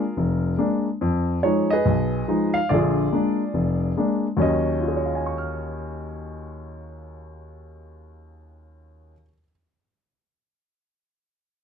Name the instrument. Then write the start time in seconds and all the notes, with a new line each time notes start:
grand piano
Already playing: F4 G#4 A#4
0.17 F1
0.58 G#3 A#3 D4
1.01 F2
1.43 F3 G#3 D#4 C#5
1.70 G#4 B4 D#5
1.85 B1
2.28 F3 G#3 D#4
2.54 F5
2.69 A#1 D3 D5
2.74 F4 G#4
3.12 G#3 A#3 D4
3.54 F1
3.97 G#3 A#3 D4
4.37 D#2 D#3 F#3 C#4
4.42 D#5
4.81 F4
4.88 G#4
4.96 C#5
5.05 F5
5.15 G#5
5.26 C#6
5.38 F6